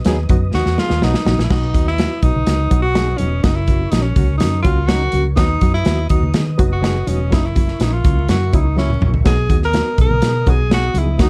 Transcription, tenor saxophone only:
0, 0, Header, 1, 2, 480
1, 0, Start_track
1, 0, Key_signature, 5, "major"
1, 0, Tempo, 484262
1, 1490, Time_signature, 4, 2, 24, 8
1, 11196, End_track
2, 0, Start_track
2, 0, Title_t, "Tenor saxophone"
2, 0, Program_c, 0, 66
2, 538, Note_on_c, 0, 66, 103
2, 780, Note_on_c, 0, 65, 106
2, 795, Note_off_c, 0, 66, 0
2, 1024, Note_on_c, 0, 63, 89
2, 1039, Note_off_c, 0, 65, 0
2, 1421, Note_off_c, 0, 63, 0
2, 1427, Note_on_c, 0, 64, 72
2, 1498, Note_on_c, 0, 63, 98
2, 1512, Note_off_c, 0, 64, 0
2, 1853, Note_off_c, 0, 63, 0
2, 1862, Note_on_c, 0, 64, 104
2, 2202, Note_on_c, 0, 63, 103
2, 2217, Note_off_c, 0, 64, 0
2, 2789, Note_off_c, 0, 63, 0
2, 2795, Note_on_c, 0, 66, 109
2, 3145, Note_on_c, 0, 61, 93
2, 3160, Note_off_c, 0, 66, 0
2, 3401, Note_on_c, 0, 63, 96
2, 3416, Note_off_c, 0, 61, 0
2, 3514, Note_on_c, 0, 64, 98
2, 3529, Note_off_c, 0, 63, 0
2, 3874, Note_on_c, 0, 63, 91
2, 3889, Note_off_c, 0, 64, 0
2, 3986, Note_on_c, 0, 61, 85
2, 4000, Note_off_c, 0, 63, 0
2, 4332, Note_off_c, 0, 61, 0
2, 4338, Note_on_c, 0, 63, 90
2, 4576, Note_off_c, 0, 63, 0
2, 4584, Note_on_c, 0, 65, 97
2, 4820, Note_on_c, 0, 66, 101
2, 4835, Note_off_c, 0, 65, 0
2, 5195, Note_off_c, 0, 66, 0
2, 5310, Note_on_c, 0, 63, 96
2, 5655, Note_off_c, 0, 63, 0
2, 5687, Note_on_c, 0, 64, 101
2, 6024, Note_off_c, 0, 64, 0
2, 6043, Note_on_c, 0, 63, 75
2, 6356, Note_off_c, 0, 63, 0
2, 6664, Note_on_c, 0, 66, 84
2, 7017, Note_on_c, 0, 61, 83
2, 7031, Note_off_c, 0, 66, 0
2, 7267, Note_on_c, 0, 63, 94
2, 7282, Note_off_c, 0, 61, 0
2, 7387, Note_on_c, 0, 64, 84
2, 7402, Note_off_c, 0, 63, 0
2, 7753, Note_on_c, 0, 63, 85
2, 7768, Note_off_c, 0, 64, 0
2, 7860, Note_on_c, 0, 65, 92
2, 7875, Note_off_c, 0, 63, 0
2, 8218, Note_off_c, 0, 65, 0
2, 8224, Note_on_c, 0, 66, 88
2, 8466, Note_on_c, 0, 63, 84
2, 8481, Note_off_c, 0, 66, 0
2, 8698, Note_off_c, 0, 63, 0
2, 8704, Note_on_c, 0, 61, 91
2, 9036, Note_off_c, 0, 61, 0
2, 9186, Note_on_c, 0, 68, 100
2, 9517, Note_off_c, 0, 68, 0
2, 9563, Note_on_c, 0, 70, 109
2, 9886, Note_off_c, 0, 70, 0
2, 9922, Note_on_c, 0, 70, 107
2, 10407, Note_on_c, 0, 68, 95
2, 10422, Note_off_c, 0, 70, 0
2, 10632, Note_off_c, 0, 68, 0
2, 10639, Note_on_c, 0, 66, 102
2, 10883, Note_on_c, 0, 64, 85
2, 10897, Note_off_c, 0, 66, 0
2, 11109, Note_off_c, 0, 64, 0
2, 11123, Note_on_c, 0, 63, 93
2, 11196, Note_off_c, 0, 63, 0
2, 11196, End_track
0, 0, End_of_file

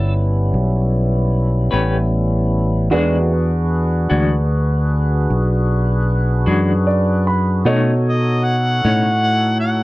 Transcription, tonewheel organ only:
0, 0, Header, 1, 2, 480
1, 0, Start_track
1, 0, Tempo, 791139
1, 1773, Time_signature, 12, 3, 24, 8
1, 5965, End_track
2, 0, Start_track
2, 0, Title_t, "Tonewheel organ"
2, 0, Program_c, 0, 16
2, 0, Note_on_c, 0, 55, 66
2, 0, Note_on_c, 0, 59, 68
2, 0, Note_on_c, 0, 61, 61
2, 0, Note_on_c, 0, 64, 68
2, 1753, Note_off_c, 0, 61, 0
2, 1755, Note_off_c, 0, 55, 0
2, 1755, Note_off_c, 0, 64, 0
2, 1756, Note_off_c, 0, 59, 0
2, 1779, Note_on_c, 0, 63, 61
2, 1783, Note_on_c, 0, 57, 57
2, 1786, Note_on_c, 0, 66, 58
2, 1787, Note_on_c, 0, 60, 60
2, 2016, Note_off_c, 0, 63, 0
2, 2018, Note_off_c, 0, 57, 0
2, 2019, Note_on_c, 0, 62, 62
2, 2020, Note_off_c, 0, 60, 0
2, 2020, Note_off_c, 0, 66, 0
2, 2022, Note_on_c, 0, 71, 62
2, 2025, Note_on_c, 0, 68, 66
2, 2030, Note_on_c, 0, 66, 67
2, 4634, Note_off_c, 0, 62, 0
2, 4636, Note_off_c, 0, 71, 0
2, 4637, Note_off_c, 0, 68, 0
2, 4639, Note_off_c, 0, 66, 0
2, 4649, Note_on_c, 0, 63, 60
2, 4649, Note_on_c, 0, 66, 56
2, 4652, Note_on_c, 0, 69, 56
2, 4658, Note_on_c, 0, 73, 61
2, 5965, Note_off_c, 0, 63, 0
2, 5965, Note_off_c, 0, 66, 0
2, 5965, Note_off_c, 0, 69, 0
2, 5965, Note_off_c, 0, 73, 0
2, 5965, End_track
0, 0, End_of_file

